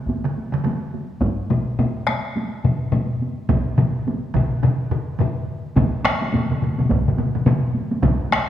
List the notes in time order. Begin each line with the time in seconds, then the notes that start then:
0.06 taiko, taiko high
0.24 taiko mid
0.37 taiko high
0.52 taiko mid, taiko high
0.64 taiko mid, taiko high
0.83 taiko high
0.94 taiko high
1.11 taiko high
1.21 taiko, taiko high
1.40 taiko high
1.50 taiko low-mid, taiko high
1.68 taiko high
1.79 taiko low-mid, taiko high
1.98 taiko high
2.07 taiko rim, taiko high
2.25 taiko high
2.36 taiko high
2.64 taiko low-mid, taiko high
2.82 taiko high
2.92 taiko low-mid, taiko high
3.11 taiko high
3.21 taiko high
3.38 taiko high
3.49 taiko, taiko low-mid, taiko mid, taiko high
3.68 taiko high
3.78 taiko low-mid, taiko mid, taiko high
3.95 taiko high
4.07 taiko high
4.24 taiko high
4.34 taiko, taiko low-mid, taiko mid, taiko high
4.52 taiko high
4.63 taiko low-mid, taiko mid
4.91 taiko low-mid, taiko mid
5.19 taiko low-mid, taiko mid
5.76 taiko, taiko low-mid, taiko mid, taiko high
6.04 taiko rim, taiko high
6.21 taiko high
6.32 taiko low-mid, taiko mid, taiko high
6.51 taiko low-mid, taiko mid
6.62 taiko low-mid, taiko mid, taiko high
6.78 taiko low-mid, taiko mid, taiko high
6.89 taiko, taiko low-mid, taiko mid, taiko high
7.08 taiko low-mid, taiko mid
7.17 taiko low-mid, taiko mid, taiko high
7.35 taiko low-mid, taiko mid
7.46 taiko low-mid, taiko mid, taiko high
7.74 taiko high
7.91 taiko high
8.03 taiko, taiko low-mid, taiko mid, taiko high
8.31 taiko rim, taiko high